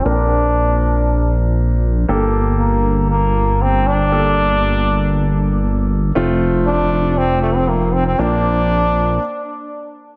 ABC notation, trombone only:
X:1
M:4/4
L:1/16
Q:1/4=118
K:Gm
V:1 name="Trombone"
D12 z4 | z4 B,4 B,4 C2 D2- | D12- D2 z2 | z4 D4 C2 A, C B,2 C C |
D12 z4 |]